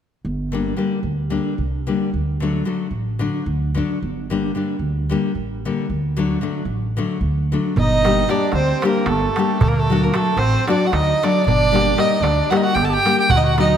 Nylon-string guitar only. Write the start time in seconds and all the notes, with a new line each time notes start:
0.52 D3 G3 A#3 D4
0.77 D3 G3 A#3 D4
1.30 D3 G3 A#3 D4
1.87 D3 G3 A#3 D4
2.40 D3 F#3 A3 D4
2.65 D3 F#3 A3 D4
3.19 D3 F#3 A3 D4
3.74 D3 F#3 A3 D4
4.30 D3 G3 A#3 D4
4.55 D3 G3 A#3 D4
5.09 D3 G3 A#3 D4
5.65 D3 G3 A#3 D4
6.17 D3 F#3 A3 D4
6.41 D3 F#3 A3 D4
6.97 D3 F#3 A3 D4
7.52 D3 F#3 A3 D4
8.05 G3 A#3 D4 G4
8.28 G3 A#3 D4 G4
8.83 G3 A#3 D4 G4
9.37 G3 A#3 D4 G4
9.90 F#3 A3 D4 F#4
10.14 F#3 A3 D4 F#4
10.68 F#3 A3 D4 F#4
11.23 F#3 A3 D4 F#4
11.72 G3 A#3 D4 G4
11.97 G3 A#3 D4 G4
12.51 G3 A#3 D4 G4
13.05 G3 A#3 D4 G4
13.58 F#3 A3 D4 F#4